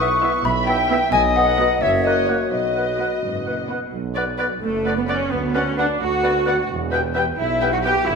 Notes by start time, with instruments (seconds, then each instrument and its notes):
Already playing: tuba B1, double bass section B1, cello section B2, french horn section B3 E4, clarinet B4
0.00 bassoon B3, oboe E5, violin section C#6, flute C#6, xylophone C#6
0.21 viola section B3 E4, bassoon B3, violin section E5, oboe E5
0.44 double bass section B1, tuba B1, cello section B2, clarinet E5, flute B5, xylophone B5, violin section B5
0.67 bassoon B3, oboe E5, flute G5, violin section G5, xylophone G5
0.90 viola section B3 E4, bassoon B3, violin section E5, oboe E5
1.12 tuba B1, double bass section B1, cello section B2, french horn section B3 D#4, clarinet D#5, flute G#5, violin section G#5, xylophone G#5
1.36 bassoon B3, oboe D#5, flute F#5, xylophone F#5, violin section F#5
1.58 viola section B3 F#4, bassoon B3, violin section D#5, oboe D#5
1.81 tuba F#1, double bass section F#1, cello section F#2, french horn section A#3 F#4, clarinet C#5, xylophone E5, violin section E5, flute E5
2.04 bassoon A#3, flute D#5, xylophone D#5, violin section D#5, oboe F#5
2.27 viola section A#3 F#4, bassoon A#3, flute C#5, xylophone C#5, violin section C#5, oboe F#5
2.51 tuba B1, double bass section B1, cello section B2, french horn section B3, clarinet B4, xylophone D#5, flute D#5, violin section D#5
2.75 bassoon B3, oboe F#5
2.98 viola section B3 F#4, bassoon B3, violin section B4, oboe F#5
3.21 tuba F#1, double bass section F#1, cello section G#2
3.46 cello section A#2, bassoon B3, oboe F#5
3.68 cello section B2, viola section B3 F#4, bassoon B3, violin section B4, oboe F#5
3.92 tuba B1, double bass section B1
4.15 french horn section B3 F#4, bassoon B3, violin section B4 D5, clarinet D5, oboe F#5
4.38 french horn section B3 F#4, bassoon B3, violin section B4 D5, clarinet D5, oboe F#5
4.61 tuba F#1, double bass section F#1, viola section A3, cello section A3, flute A4
4.84 french horn section B3 F#4, bassoon B3, violin section B4 D5, clarinet D5, oboe F#5
4.97 viola section B3, cello section B3, flute B4
5.06 french horn section B3 F#4, bassoon B3, cello section C#4, viola section C#4, violin section B4 D5, flute C#5, clarinet D5, oboe F#5
5.30 tuba D2, double bass section D2, viola section B3, cello section B3, flute B4
5.53 french horn section B3 F#4, bassoon B3, cello section C#4, viola section C#4, violin section B4 F#5, flute C#5, clarinet D5, oboe F#5
5.77 bassoon B3, french horn section B3 F#4, cello section D4, viola section D4, violin section B4 F#5, clarinet D5, flute D5, oboe F#5
5.99 tuba D2, double bass section D2, viola section F#4, cello section F#4, flute F#5
6.23 bassoon B3, french horn section B3 F#4, violin section B4 F#5, clarinet D5, oboe F#5
6.46 bassoon B3, french horn section B3 F#4, violin section B4 F#5, clarinet D5, oboe F#5
6.68 tuba E1, double bass section E2
6.91 bassoon B3, french horn section B3 G4, violin section B4 E5 G5, clarinet B4, oboe G5
7.14 bassoon B3, french horn section B3 G4, clarinet B4, violin section B4 E5 G5, oboe G5
7.37 tuba B1, double bass section B1, cello section E4, viola section E4, flute E5
7.61 french horn section B3 G4, bassoon B3, violin section B4 E5 G5, clarinet B4, oboe G5
7.72 viola section F#4, cello section F#4, flute F#5
7.83 french horn section B3 G4, bassoon B3, cello section G4, viola section G4, violin section B4 E5 G5, clarinet B4, oboe G5, flute G5
8.06 tuba G1, double bass section G1, cello section E4, viola section E4, flute E5